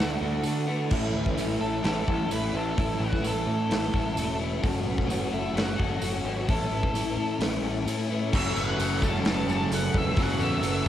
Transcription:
Already playing: D2 D3 A3 F#4 A4 B4 E5 F#5 E6
0.00 D4 F#4, snare
0.20 D2 A3 D4 F#4 A4
0.43 D3 A3 D4 F#4 A4, open hi-hat, tambourine
0.67 A3 D4 F#4 B4
0.90 A1 A2 E3 A3 C#4 E4 A4 C#6, kick, crash
1.13 D2 B4
1.26 kick, snare
1.37 A1 A2 E3 A3 C#4 E4, open hi-hat, tambourine
1.61 A1 A4
1.82 A1 A2 E3 A3 C#4 E4 A4 B4, snare, open hi-hat
2.06 A1 A3 C#4 E4 A4, kick
2.30 A1 E3 A3 C#4 E4 A4 B4, open hi-hat, tambourine
2.52 A1 A3 C#4 E4 B4
2.56 A4
2.75 A1 A2 E3 A3 C#4 E4 A4, kick, open hi-hat
2.98 A1 F#4 B4
3.13 kick, snare
3.21 A1 A2 E3 A3 C#4 E4, open hi-hat, tambourine
3.27 A4
3.46 A2 A4
3.70 A1 A2 E3 A3 C#4 E4 B4, snare, open hi-hat
3.92 A1 A3 C#4 E4 A4, kick
4.16 E1 E3 A3 C#4 E4 A4, open hi-hat, tambourine
4.39 A3 C#4 E4 B4
4.62 F#1 F#2 C#3 F#3 A3 C#4 F#4 A4 C#5, kick, open hi-hat
4.85 B1 B4
4.98 kick, snare
5.06 F#1 F#2 C#3 F#3 A3 C#4 F#4, tambourine
5.10 F#3, open hi-hat
5.31 F#1 E4 A4
5.53 F#1 F#3 A3 C#4 F#4 B4, open hi-hat
5.58 snare
5.76 F#1 A3 C#4 F#4 A4, kick
5.82 F#3
6.00 F#1 F#3 A3 C#4 F#4 A4, open hi-hat, tambourine
6.24 G#1 A3 C#4 F#4 B4
6.29 F#3
6.47 A1 A2 E3 A3 C#4 E4 A4 E5 B5, kick, open hi-hat
6.70 A1 B4
6.83 kick
6.94 A1 A2 E3 A3 C#4 E4, open hi-hat, tambourine
7.16 A2 A4
7.39 A1 A2 E3 A3 C#4 E4 B4, snare, open hi-hat
7.62 A1 A3 C#4 E4 A4
7.86 A2 E3 A3 C#4 E4 A4, open hi-hat, tambourine
8.10 A3 C#4 E4 B4
8.32 F#1 F#2 C#3 F#3 A3 C#4 F#4 A4 E5 F#5 C#6, kick, crash, tambourine
8.46 tambourine
8.55 F#1 C#4 F#4 A4 B4, tambourine
8.60 F#5
8.78 F#1 F#3 C#4 F#4 A4, open hi-hat, tambourine
9.02 C#4 F#4 A4 A5, kick, tambourine
9.16 tambourine
9.24 F#1 F#3 C#4 F#4 A4 B4, snare, open hi-hat, tambourine
9.30 A5
9.47 F#1 C#4 F#4 A4, tambourine
9.51 A5
9.70 F#1 F#3 C#4 F#4 A4, open hi-hat, tambourine
9.74 A4 F#5
9.93 E1 C#4 F#4 A4 B4, kick
9.97 E5
10.16 F#1 F#2 C#3 F#3 C#4 F#4 A4, kick, open hi-hat, tambourine
10.23 F#5
10.29 tambourine
10.38 E2 C#4 F#4 A4 B4, tambourine
10.43 E5
10.62 F#1 F#3 C#4 F#4 A4, open hi-hat, tambourine
10.69 E5
10.85 A4

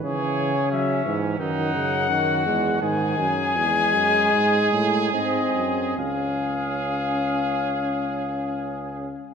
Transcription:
0.04 C#3 E3 G#4 C#5
0.71 F#3 C#4 E5
1.05 G#2 E3
1.40 F#2 D#3 D#4 F#5
1.75 C#3
2.09 D#3 F#4
2.46 E2 G#3
2.81 G#2 D#3 G#4 G#5
3.18 F#2
3.56 E2 G#3
3.94 F#2
4.33 G#2
4.73 A2
5.13 G#2 C4 D#5
5.55 F#2
5.97 C#2 C#4 G#4 F5

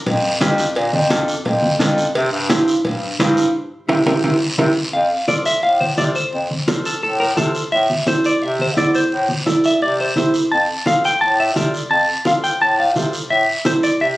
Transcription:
0.06 F2, cowbell, high conga, low conga, long guiro
0.41 F2 D4 F4 G4, cowbell, high conga, low timbale, short guiro
0.58 short guiro
0.75 A#2, cowbell, high conga, long guiro
0.93 F2, high conga
1.10 D4 F4 A4, cowbell, high conga, short guiro
1.28 short guiro
1.45 F2, cowbell, high conga, low conga, long guiro
1.62 high conga
1.79 F2 D4 F4 A4, cowbell, high conga, low timbale, short guiro
1.98 short guiro
2.15 C3, cowbell, high conga, long guiro
2.32 G2
2.50 E4 G4 C5, cowbell, high conga, short guiro
2.68 short guiro
2.84 G2, cowbell, high conga, low conga, long guiro
3.19 G2 E4 G4 C5, cowbell, high conga, low timbale, short guiro
3.37 short guiro
3.89 C3 E4 G4 C5, high conga, high timbale, long guiro
4.06 C3 E4 G4 C5, high conga, high timbale, long guiro
4.23 C3 E4 G4 C5, high conga, high timbale, long guiro
4.58 C3 E4 G4 C5, high conga, high timbale
4.93 F2 F5, high conga
5.28 F4 A4 C5 D5, high conga, short guiro
5.45 E5, short guiro
5.63 A2 F5, high conga, long guiro
5.80 C5, high conga
5.97 C3 F4 A4 C5 D5, high conga, short guiro
6.15 C5, short guiro
6.33 F2, high conga, long guiro
6.51 high conga
6.68 F4 A4 C5, high conga, short guiro
6.85 A4, short guiro
7.03 A2 A4, high conga, long guiro
7.20 A#4
7.37 C3 F4 A4 C5, high conga, short guiro
7.55 short guiro
7.72 A2 E5, high conga, long guiro
7.90 high conga
8.07 E4 A4 C5, high conga, short guiro
8.24 D5, short guiro
8.42 C3 E5, high conga, long guiro
8.59 C5, high conga
8.77 E2 E4 A4 C5 D5, high conga, short guiro
8.95 C5, short guiro
9.12 A2, high conga, long guiro
9.29 high conga
9.46 E4 A4 D5, high conga, short guiro
9.64 E5, short guiro
9.82 C3 D5, high conga, long guiro
10.01 C5
10.16 C3 E4 A4 C5, high conga, short guiro
10.34 short guiro
10.51 F2 A5, high conga, long guiro
10.86 F4 A4 C5 F5, high conga, short guiro
11.04 G5, short guiro
11.21 A2 A5, high conga, long guiro
11.40 E5
11.56 C3 F4 A4 D5, high conga, short guiro
11.74 short guiro
11.90 F2 A5, high conga, long guiro
12.25 F4 A4 C5 F5, high conga, short guiro
12.44 G5, short guiro
12.61 A2 A5, high conga, long guiro
12.80 F5
12.95 C3 F4 A4 C5, high conga, short guiro
13.13 short guiro
13.30 A2 E5, high conga, long guiro
13.65 E4 A4 C5, high conga, short guiro
13.83 D5, short guiro
14.00 C3 E5, high conga, long guiro

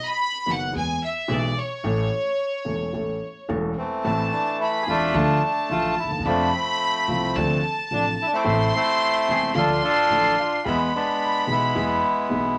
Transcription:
0.06 B5
0.46 F#1 F#2 D#3 F#3 B3 F#4 F#5
0.73 E2 E3 G#3 B3 G#4
0.77 G#5
1.05 E5
1.28 B1 B2 E3 G#3 B3 G#4
1.33 D5
1.59 C#5
1.83 A1 A2 E3 A3 C#4 A4
2.65 E1 E2 E3 A3 C#4 A4
2.93 A1 A2 E3 A3 C#4 A4
3.49 E1 E2 E3 A3 C#4 A4
3.77 E3 A3 C4
4.04 A1 A2 E3 A3 C4 A4 A5
4.32 D4
4.60 E4 B5
4.82 G#4
4.86 E1 E2 E3 A3 C4 D4 F4 A4
5.14 D2 D3 F3 A3 F4 A5
5.44 D4
5.70 A1 A2 D3 F3 A3 F4
5.99 E4
6.03 D2
6.11 D#2
6.19 E2
6.25 F2 C3 F3 A3 D4 F4 B5
6.53 F3 A3 C4
7.08 C2 C3 F3 A3 F4
7.34 D2 C3 D3 F3 A3 D4 A5
7.91 A1 A2 C3 F3 A3 D4
8.22 E4
8.26 D4
8.33 A3 C4 E4
8.37 D6
8.44 A1 A2 C3 E3 A3 E4 C6
8.75 A3 C4 E4
9.27 E1 E2 C3 E3 A3 E4 G#4
9.54 D2 D3 F3 A3 D4 F4 C6
9.58 A4
9.83 D4 F4 A4
10.09 A1 A2 D3 F3 A3 F4
10.40 F4
10.65 E2 E3 G#3 B3 E4 G#4 B5
10.95 G#3 B3 D4
11.46 B1 B2 E3 G#3 B3 G#4
11.51 G#3 B3 E4
11.75 E2 E3 G#3 B3 G#4
12.29 B1 B2 E3 G#3 B3 G#4

